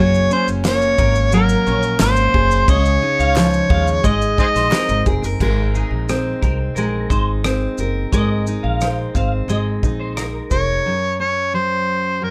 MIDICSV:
0, 0, Header, 1, 6, 480
1, 0, Start_track
1, 0, Tempo, 680272
1, 1895, Time_signature, 4, 2, 24, 8
1, 8682, End_track
2, 0, Start_track
2, 0, Title_t, "Harmonica"
2, 0, Program_c, 0, 22
2, 0, Note_on_c, 0, 73, 102
2, 223, Note_off_c, 0, 73, 0
2, 232, Note_on_c, 0, 72, 91
2, 337, Note_off_c, 0, 72, 0
2, 479, Note_on_c, 0, 73, 94
2, 919, Note_off_c, 0, 73, 0
2, 948, Note_on_c, 0, 70, 79
2, 1393, Note_off_c, 0, 70, 0
2, 1428, Note_on_c, 0, 72, 91
2, 1872, Note_off_c, 0, 72, 0
2, 1908, Note_on_c, 0, 73, 105
2, 2352, Note_off_c, 0, 73, 0
2, 2380, Note_on_c, 0, 73, 87
2, 2865, Note_on_c, 0, 75, 86
2, 2876, Note_off_c, 0, 73, 0
2, 3099, Note_off_c, 0, 75, 0
2, 3102, Note_on_c, 0, 68, 68
2, 3102, Note_on_c, 0, 72, 68
2, 3102, Note_on_c, 0, 75, 97
2, 3147, Note_off_c, 0, 72, 0
2, 3162, Note_off_c, 0, 68, 0
2, 3548, Note_off_c, 0, 75, 0
2, 7424, Note_on_c, 0, 73, 88
2, 7874, Note_off_c, 0, 73, 0
2, 7907, Note_on_c, 0, 73, 79
2, 8127, Note_off_c, 0, 73, 0
2, 8148, Note_on_c, 0, 72, 86
2, 8633, Note_on_c, 0, 70, 71
2, 8644, Note_off_c, 0, 72, 0
2, 8682, Note_off_c, 0, 70, 0
2, 8682, End_track
3, 0, Start_track
3, 0, Title_t, "Clean electric guitar"
3, 0, Program_c, 1, 27
3, 215, Note_on_c, 1, 68, 72
3, 330, Note_off_c, 1, 68, 0
3, 695, Note_on_c, 1, 70, 79
3, 810, Note_off_c, 1, 70, 0
3, 938, Note_on_c, 1, 70, 96
3, 1165, Note_off_c, 1, 70, 0
3, 1176, Note_on_c, 1, 73, 85
3, 1290, Note_off_c, 1, 73, 0
3, 1895, Note_on_c, 1, 75, 99
3, 2122, Note_off_c, 1, 75, 0
3, 2254, Note_on_c, 1, 77, 79
3, 2481, Note_off_c, 1, 77, 0
3, 2611, Note_on_c, 1, 77, 77
3, 2726, Note_off_c, 1, 77, 0
3, 2851, Note_on_c, 1, 75, 83
3, 2965, Note_off_c, 1, 75, 0
3, 3216, Note_on_c, 1, 72, 76
3, 3327, Note_on_c, 1, 70, 86
3, 3328, Note_off_c, 1, 72, 0
3, 3667, Note_off_c, 1, 70, 0
3, 4048, Note_on_c, 1, 68, 59
3, 4164, Note_off_c, 1, 68, 0
3, 4526, Note_on_c, 1, 70, 74
3, 4643, Note_off_c, 1, 70, 0
3, 4763, Note_on_c, 1, 70, 83
3, 4995, Note_off_c, 1, 70, 0
3, 5008, Note_on_c, 1, 72, 75
3, 5124, Note_off_c, 1, 72, 0
3, 5730, Note_on_c, 1, 75, 92
3, 5960, Note_off_c, 1, 75, 0
3, 6089, Note_on_c, 1, 77, 75
3, 6319, Note_off_c, 1, 77, 0
3, 6455, Note_on_c, 1, 77, 69
3, 6569, Note_off_c, 1, 77, 0
3, 6696, Note_on_c, 1, 75, 76
3, 6809, Note_off_c, 1, 75, 0
3, 7053, Note_on_c, 1, 72, 74
3, 7167, Note_off_c, 1, 72, 0
3, 7170, Note_on_c, 1, 70, 72
3, 7512, Note_off_c, 1, 70, 0
3, 8682, End_track
4, 0, Start_track
4, 0, Title_t, "Steel-string acoustic guitar"
4, 0, Program_c, 2, 25
4, 0, Note_on_c, 2, 54, 88
4, 0, Note_on_c, 2, 58, 63
4, 0, Note_on_c, 2, 61, 61
4, 0, Note_on_c, 2, 68, 68
4, 216, Note_off_c, 2, 61, 0
4, 219, Note_on_c, 2, 61, 64
4, 458, Note_off_c, 2, 58, 0
4, 461, Note_on_c, 2, 58, 75
4, 482, Note_off_c, 2, 68, 0
4, 694, Note_off_c, 2, 58, 0
4, 703, Note_on_c, 2, 58, 63
4, 927, Note_off_c, 2, 54, 0
4, 936, Note_on_c, 2, 54, 81
4, 1179, Note_off_c, 2, 61, 0
4, 1182, Note_on_c, 2, 61, 56
4, 1403, Note_off_c, 2, 58, 0
4, 1411, Note_on_c, 2, 58, 60
4, 1654, Note_on_c, 2, 68, 63
4, 1891, Note_on_c, 2, 49, 81
4, 1940, Note_off_c, 2, 58, 0
4, 1942, Note_off_c, 2, 54, 0
4, 1945, Note_off_c, 2, 61, 0
4, 2131, Note_on_c, 2, 63, 67
4, 2369, Note_on_c, 2, 53, 78
4, 2608, Note_on_c, 2, 56, 62
4, 2844, Note_off_c, 2, 53, 0
4, 2846, Note_off_c, 2, 56, 0
4, 2846, Note_on_c, 2, 56, 85
4, 2899, Note_off_c, 2, 49, 0
4, 3092, Note_off_c, 2, 63, 0
4, 3094, Note_on_c, 2, 63, 61
4, 3336, Note_on_c, 2, 60, 58
4, 3573, Note_off_c, 2, 68, 0
4, 3576, Note_on_c, 2, 68, 64
4, 3699, Note_off_c, 2, 68, 0
4, 3699, Note_on_c, 2, 70, 63
4, 3816, Note_off_c, 2, 56, 0
4, 3818, Note_off_c, 2, 70, 0
4, 3819, Note_on_c, 2, 56, 76
4, 3827, Note_on_c, 2, 70, 70
4, 4060, Note_off_c, 2, 63, 0
4, 4062, Note_on_c, 2, 63, 63
4, 4296, Note_off_c, 2, 60, 0
4, 4298, Note_on_c, 2, 60, 70
4, 4535, Note_off_c, 2, 60, 0
4, 4545, Note_on_c, 2, 60, 57
4, 4773, Note_off_c, 2, 56, 0
4, 4782, Note_on_c, 2, 56, 77
4, 5010, Note_off_c, 2, 63, 0
4, 5018, Note_on_c, 2, 63, 52
4, 5249, Note_off_c, 2, 60, 0
4, 5257, Note_on_c, 2, 60, 59
4, 5499, Note_off_c, 2, 70, 0
4, 5501, Note_on_c, 2, 70, 57
4, 5732, Note_off_c, 2, 56, 0
4, 5739, Note_off_c, 2, 70, 0
4, 5739, Note_on_c, 2, 56, 79
4, 5742, Note_on_c, 2, 70, 69
4, 5974, Note_off_c, 2, 63, 0
4, 5982, Note_on_c, 2, 63, 55
4, 6216, Note_off_c, 2, 60, 0
4, 6226, Note_on_c, 2, 60, 67
4, 6455, Note_off_c, 2, 60, 0
4, 6464, Note_on_c, 2, 60, 61
4, 6692, Note_off_c, 2, 56, 0
4, 6700, Note_on_c, 2, 56, 73
4, 6937, Note_off_c, 2, 63, 0
4, 6945, Note_on_c, 2, 63, 48
4, 7181, Note_off_c, 2, 60, 0
4, 7420, Note_off_c, 2, 70, 0
4, 7423, Note_on_c, 2, 70, 52
4, 7663, Note_on_c, 2, 42, 61
4, 7709, Note_off_c, 2, 56, 0
4, 7711, Note_off_c, 2, 63, 0
4, 7901, Note_on_c, 2, 61, 47
4, 8141, Note_on_c, 2, 54, 54
4, 8613, Note_off_c, 2, 42, 0
4, 8622, Note_on_c, 2, 42, 58
4, 8682, Note_off_c, 2, 42, 0
4, 8682, Note_off_c, 2, 54, 0
4, 8682, Note_off_c, 2, 61, 0
4, 8682, Note_off_c, 2, 70, 0
4, 8682, End_track
5, 0, Start_track
5, 0, Title_t, "Upright bass"
5, 0, Program_c, 3, 32
5, 0, Note_on_c, 3, 30, 106
5, 174, Note_off_c, 3, 30, 0
5, 336, Note_on_c, 3, 30, 80
5, 631, Note_off_c, 3, 30, 0
5, 696, Note_on_c, 3, 32, 110
5, 1089, Note_off_c, 3, 32, 0
5, 1176, Note_on_c, 3, 34, 89
5, 1372, Note_off_c, 3, 34, 0
5, 1415, Note_on_c, 3, 32, 98
5, 1612, Note_off_c, 3, 32, 0
5, 1653, Note_on_c, 3, 30, 85
5, 1850, Note_off_c, 3, 30, 0
5, 1890, Note_on_c, 3, 37, 104
5, 2088, Note_off_c, 3, 37, 0
5, 2252, Note_on_c, 3, 37, 79
5, 2547, Note_off_c, 3, 37, 0
5, 2611, Note_on_c, 3, 39, 91
5, 2808, Note_off_c, 3, 39, 0
5, 2852, Note_on_c, 3, 32, 88
5, 3048, Note_off_c, 3, 32, 0
5, 3206, Note_on_c, 3, 34, 90
5, 3307, Note_off_c, 3, 34, 0
5, 3448, Note_on_c, 3, 32, 92
5, 3548, Note_off_c, 3, 32, 0
5, 3572, Note_on_c, 3, 29, 85
5, 3670, Note_off_c, 3, 29, 0
5, 3686, Note_on_c, 3, 30, 79
5, 3787, Note_off_c, 3, 30, 0
5, 3813, Note_on_c, 3, 32, 90
5, 4107, Note_off_c, 3, 32, 0
5, 4167, Note_on_c, 3, 34, 74
5, 4464, Note_off_c, 3, 34, 0
5, 4534, Note_on_c, 3, 36, 80
5, 4730, Note_off_c, 3, 36, 0
5, 4769, Note_on_c, 3, 34, 87
5, 4967, Note_off_c, 3, 34, 0
5, 5011, Note_on_c, 3, 32, 74
5, 5405, Note_off_c, 3, 32, 0
5, 5492, Note_on_c, 3, 30, 83
5, 5689, Note_off_c, 3, 30, 0
5, 5734, Note_on_c, 3, 32, 99
5, 6029, Note_off_c, 3, 32, 0
5, 6095, Note_on_c, 3, 34, 76
5, 6390, Note_off_c, 3, 34, 0
5, 6455, Note_on_c, 3, 32, 75
5, 6652, Note_off_c, 3, 32, 0
5, 6689, Note_on_c, 3, 32, 89
5, 6889, Note_off_c, 3, 32, 0
5, 6935, Note_on_c, 3, 34, 72
5, 7330, Note_off_c, 3, 34, 0
5, 7415, Note_on_c, 3, 29, 69
5, 7613, Note_off_c, 3, 29, 0
5, 8682, End_track
6, 0, Start_track
6, 0, Title_t, "Drums"
6, 101, Note_on_c, 9, 82, 45
6, 172, Note_off_c, 9, 82, 0
6, 218, Note_on_c, 9, 82, 60
6, 288, Note_off_c, 9, 82, 0
6, 338, Note_on_c, 9, 82, 58
6, 409, Note_off_c, 9, 82, 0
6, 453, Note_on_c, 9, 82, 61
6, 458, Note_on_c, 9, 38, 118
6, 458, Note_on_c, 9, 39, 84
6, 523, Note_off_c, 9, 82, 0
6, 528, Note_off_c, 9, 38, 0
6, 528, Note_off_c, 9, 39, 0
6, 576, Note_on_c, 9, 82, 40
6, 646, Note_off_c, 9, 82, 0
6, 693, Note_on_c, 9, 82, 47
6, 694, Note_on_c, 9, 36, 101
6, 764, Note_off_c, 9, 82, 0
6, 765, Note_off_c, 9, 36, 0
6, 813, Note_on_c, 9, 82, 50
6, 884, Note_off_c, 9, 82, 0
6, 932, Note_on_c, 9, 82, 78
6, 1003, Note_off_c, 9, 82, 0
6, 1051, Note_on_c, 9, 82, 57
6, 1121, Note_off_c, 9, 82, 0
6, 1176, Note_on_c, 9, 82, 43
6, 1246, Note_off_c, 9, 82, 0
6, 1290, Note_on_c, 9, 82, 52
6, 1360, Note_off_c, 9, 82, 0
6, 1407, Note_on_c, 9, 38, 111
6, 1410, Note_on_c, 9, 39, 97
6, 1410, Note_on_c, 9, 82, 72
6, 1478, Note_off_c, 9, 38, 0
6, 1480, Note_off_c, 9, 39, 0
6, 1481, Note_off_c, 9, 82, 0
6, 1527, Note_on_c, 9, 82, 55
6, 1597, Note_off_c, 9, 82, 0
6, 1652, Note_on_c, 9, 36, 93
6, 1723, Note_off_c, 9, 36, 0
6, 1772, Note_on_c, 9, 82, 57
6, 1843, Note_off_c, 9, 82, 0
6, 1892, Note_on_c, 9, 36, 106
6, 1893, Note_on_c, 9, 82, 78
6, 1962, Note_off_c, 9, 36, 0
6, 1963, Note_off_c, 9, 82, 0
6, 2014, Note_on_c, 9, 82, 46
6, 2084, Note_off_c, 9, 82, 0
6, 2257, Note_on_c, 9, 82, 55
6, 2328, Note_off_c, 9, 82, 0
6, 2371, Note_on_c, 9, 39, 85
6, 2371, Note_on_c, 9, 82, 60
6, 2376, Note_on_c, 9, 38, 106
6, 2441, Note_off_c, 9, 39, 0
6, 2441, Note_off_c, 9, 82, 0
6, 2446, Note_off_c, 9, 38, 0
6, 2494, Note_on_c, 9, 82, 45
6, 2565, Note_off_c, 9, 82, 0
6, 2612, Note_on_c, 9, 36, 94
6, 2682, Note_off_c, 9, 36, 0
6, 2734, Note_on_c, 9, 82, 50
6, 2804, Note_off_c, 9, 82, 0
6, 2852, Note_on_c, 9, 36, 87
6, 2853, Note_on_c, 9, 82, 76
6, 2922, Note_off_c, 9, 36, 0
6, 2924, Note_off_c, 9, 82, 0
6, 2974, Note_on_c, 9, 82, 58
6, 3045, Note_off_c, 9, 82, 0
6, 3092, Note_on_c, 9, 36, 91
6, 3099, Note_on_c, 9, 82, 47
6, 3163, Note_off_c, 9, 36, 0
6, 3169, Note_off_c, 9, 82, 0
6, 3212, Note_on_c, 9, 38, 31
6, 3214, Note_on_c, 9, 82, 50
6, 3283, Note_off_c, 9, 38, 0
6, 3285, Note_off_c, 9, 82, 0
6, 3325, Note_on_c, 9, 39, 94
6, 3332, Note_on_c, 9, 38, 114
6, 3335, Note_on_c, 9, 82, 63
6, 3396, Note_off_c, 9, 39, 0
6, 3403, Note_off_c, 9, 38, 0
6, 3406, Note_off_c, 9, 82, 0
6, 3450, Note_on_c, 9, 82, 56
6, 3520, Note_off_c, 9, 82, 0
6, 3571, Note_on_c, 9, 82, 54
6, 3572, Note_on_c, 9, 36, 88
6, 3642, Note_off_c, 9, 36, 0
6, 3642, Note_off_c, 9, 82, 0
6, 3695, Note_on_c, 9, 82, 58
6, 3765, Note_off_c, 9, 82, 0
6, 3813, Note_on_c, 9, 36, 89
6, 3815, Note_on_c, 9, 49, 84
6, 3884, Note_off_c, 9, 36, 0
6, 3885, Note_off_c, 9, 49, 0
6, 4057, Note_on_c, 9, 82, 46
6, 4128, Note_off_c, 9, 82, 0
6, 4295, Note_on_c, 9, 82, 59
6, 4301, Note_on_c, 9, 37, 97
6, 4366, Note_off_c, 9, 82, 0
6, 4371, Note_off_c, 9, 37, 0
6, 4534, Note_on_c, 9, 36, 80
6, 4538, Note_on_c, 9, 82, 39
6, 4604, Note_off_c, 9, 36, 0
6, 4608, Note_off_c, 9, 82, 0
6, 4773, Note_on_c, 9, 82, 67
6, 4844, Note_off_c, 9, 82, 0
6, 5011, Note_on_c, 9, 36, 89
6, 5016, Note_on_c, 9, 82, 43
6, 5082, Note_off_c, 9, 36, 0
6, 5086, Note_off_c, 9, 82, 0
6, 5253, Note_on_c, 9, 37, 111
6, 5256, Note_on_c, 9, 82, 63
6, 5323, Note_off_c, 9, 37, 0
6, 5326, Note_off_c, 9, 82, 0
6, 5489, Note_on_c, 9, 82, 49
6, 5559, Note_off_c, 9, 82, 0
6, 5734, Note_on_c, 9, 36, 86
6, 5737, Note_on_c, 9, 82, 68
6, 5804, Note_off_c, 9, 36, 0
6, 5807, Note_off_c, 9, 82, 0
6, 5975, Note_on_c, 9, 82, 47
6, 6046, Note_off_c, 9, 82, 0
6, 6216, Note_on_c, 9, 82, 61
6, 6221, Note_on_c, 9, 37, 91
6, 6286, Note_off_c, 9, 82, 0
6, 6292, Note_off_c, 9, 37, 0
6, 6456, Note_on_c, 9, 36, 76
6, 6458, Note_on_c, 9, 82, 42
6, 6526, Note_off_c, 9, 36, 0
6, 6528, Note_off_c, 9, 82, 0
6, 6700, Note_on_c, 9, 82, 67
6, 6770, Note_off_c, 9, 82, 0
6, 6937, Note_on_c, 9, 36, 79
6, 6943, Note_on_c, 9, 82, 43
6, 7007, Note_off_c, 9, 36, 0
6, 7013, Note_off_c, 9, 82, 0
6, 7177, Note_on_c, 9, 37, 99
6, 7180, Note_on_c, 9, 82, 62
6, 7247, Note_off_c, 9, 37, 0
6, 7250, Note_off_c, 9, 82, 0
6, 7415, Note_on_c, 9, 82, 48
6, 7416, Note_on_c, 9, 36, 74
6, 7486, Note_off_c, 9, 36, 0
6, 7486, Note_off_c, 9, 82, 0
6, 8682, End_track
0, 0, End_of_file